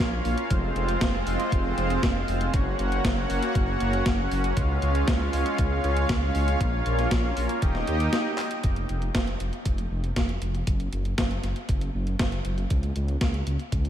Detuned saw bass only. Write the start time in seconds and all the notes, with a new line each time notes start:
0.00 A#1
0.25 A#1
0.51 F1
0.76 F1
1.01 F1
1.27 F1
1.52 F1
1.78 F1
2.03 F1
2.28 F1
2.54 F#1
2.79 F#1
3.04 F#1
3.30 F#1
3.55 F#1
3.81 F#1
4.06 F#1
4.32 F#1
4.57 C#2
4.82 C#2
5.08 C#2
5.33 C#2
5.59 C#2
5.84 C#2
6.10 C#2
6.35 C#2
6.61 A#1
6.86 A#1
7.11 A#1
7.37 A#1
7.62 D#1
7.88 D#2
8.64 F1
8.90 F1
9.15 F1
9.40 F1
9.66 F1
9.91 F1
10.16 F1
10.42 F1
10.67 F#1
10.93 F#1
11.18 F#1
11.43 F#1
11.69 F#1
11.95 F#1
12.20 F#1
12.45 F#1
12.71 C#2
12.96 C#2
13.21 C#2
13.47 C#2
13.72 C#2